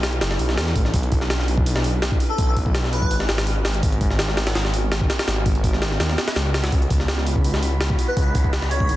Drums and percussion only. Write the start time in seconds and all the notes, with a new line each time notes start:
0.03 snare, open hi-hat
0.13 closed hi-hat
0.21 snare, open hi-hat
0.31 snare
0.39 open hi-hat
0.49 snare
0.58 snare, open hi-hat
0.67 snare
0.76 kick, open hi-hat
0.85 snare
0.94 kick, open hi-hat
1.03 closed hi-hat
1.12 kick, open hi-hat
1.21 snare
1.30 snare, open hi-hat
1.39 snare
1.48 open hi-hat
1.57 kick
1.66 open hi-hat
1.76 snare
1.84 open hi-hat
2.02 snare, open hi-hat
2.12 kick
2.20 open hi-hat
2.38 kick, open hi-hat
2.57 kick, open hi-hat
2.66 kick
2.75 snare, open hi-hat
2.84 snare
2.93 open hi-hat
3.02 kick
3.11 open hi-hat
3.20 snare
3.29 snare, open hi-hat
3.38 snare, open hi-hat
3.47 open hi-hat
3.65 snare, open hi-hat
3.74 closed hi-hat
3.83 kick, open hi-hat
3.92 closed hi-hat
4.01 kick, open hi-hat
4.11 snare
4.19 snare, open hi-hat
4.28 snare
4.37 snare, open hi-hat
4.47 snare, open hi-hat
4.55 snare, open hi-hat
4.65 snare
4.74 open hi-hat
4.92 snare, open hi-hat
5.01 kick
5.10 snare, open hi-hat
5.19 snare, open hi-hat
5.28 snare, open hi-hat
5.46 kick, open hi-hat
5.55 closed hi-hat
5.64 kick, open hi-hat
5.73 snare
5.82 snare, open hi-hat
5.91 snare
6.00 snare, open hi-hat
6.10 snare
6.18 snare, open hi-hat
6.28 snare, open hi-hat
6.36 snare, open hi-hat
6.54 snare, open hi-hat
6.64 snare, open hi-hat
6.72 kick, open hi-hat
6.82 closed hi-hat
6.90 kick, open hi-hat
7.00 snare
7.08 snare, open hi-hat
7.18 snare
7.27 open hi-hat
7.36 kick
7.45 open hi-hat
7.54 snare
7.63 open hi-hat
7.81 snare, open hi-hat
7.90 kick
7.99 open hi-hat
8.17 kick, open hi-hat
8.35 kick, open hi-hat
8.44 kick
8.53 snare, open hi-hat
8.62 snare
8.71 open hi-hat
8.80 kick
8.89 open hi-hat